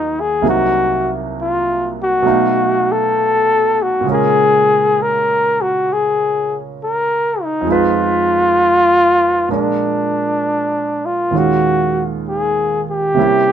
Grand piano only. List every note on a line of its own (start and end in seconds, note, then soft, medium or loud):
0.00 0.41 D#2 soft
0.00 0.42 D#3 soft
0.00 0.42 F#3 soft
0.00 0.41 A#3 soft
0.00 0.43 C#4 soft
0.00 0.41 D#4 soft
0.00 0.42 F4 soft
0.00 0.44 F#4 soft
0.00 0.44 F5 medium
0.42 2.24 C2 soft
0.42 2.24 C3 soft
0.42 2.22 F#3 soft
0.42 2.25 A#3 soft
0.42 2.25 D#4 soft
2.22 4.03 B2 medium
2.22 4.04 F#3 soft
2.22 4.05 A3 soft
2.22 4.05 D#4 soft
2.28 4.06 F5 medium
4.01 7.64 A#2 soft
4.01 7.65 C#3 soft
4.06 7.65 G#3 soft
4.06 7.68 C#4 soft
4.11 7.69 A#4 medium
7.61 9.46 F2 soft
7.61 9.48 F3 soft
7.67 9.48 G#3 soft
7.67 9.50 D#4 soft
7.72 9.52 B4 medium
9.49 11.30 A#2 soft
9.49 11.33 F3 soft
9.49 11.32 G#3 soft
9.49 11.33 D4 soft
9.49 11.33 A#4 soft
11.31 13.16 D#2 soft
11.31 13.16 A#2 soft
11.31 13.16 D#3 soft
11.31 13.17 G#3 soft
11.31 13.17 C#4 soft
11.36 13.18 F5 soft
13.14 13.52 C3 soft
13.14 13.52 G3 soft
13.14 13.52 A#3 soft
13.14 13.52 C#4 soft
13.19 13.52 E4 soft